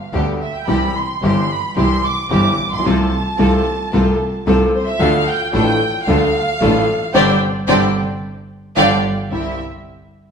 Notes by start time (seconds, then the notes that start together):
Already playing: F5
0.13 D2 D3 G3 B3 D4 G4
0.41 E5
0.56 G5
0.68 C2 C3 E3 G3 C4 E4 G4 B5
0.95 C6
1.22 G1 G2 E3 G3 C4 E4 G4 C6
1.50 B5
1.76 C2 C3 E3 G3 C4 E4 G4 C6
2.05 D6
2.30 G1 G2 E3 G3 C4 E4 G4 D6
2.58 A#1
2.66 A1
2.72 A#1 C6
2.79 B1
2.85 C2 C3 F3 A3 C4 F4 A4 A5
3.39 C2 C3 F3 A3 C4 F4 A4
3.92 C2 C3 F3 A3 C4 F4 A4
4.46 C2 C3 F3 A3 C4 F4 A4
4.75 C5
4.87 E5
4.99 D2 D3 F3 A3 D4 F4 A4 F5
5.28 G5
5.53 A1 A2 F3 A3 D4 F4 A4 G5
6.07 D2 D3 F3 A3 D4 F4 A4 F5
6.60 A1 A2 F3 A3 D4 F4 A4
7.14 G1 C3 D3 G3 C4 D4 G4 C5 D5 G5
7.68 G1 C3 D3 G3 C4 D4 G4 C5 D5 G5
8.76 G1 D3 F3 G3 D4 F4 G4 D5 F5 G5
9.31 C2 G3 C4 E4 G4 E5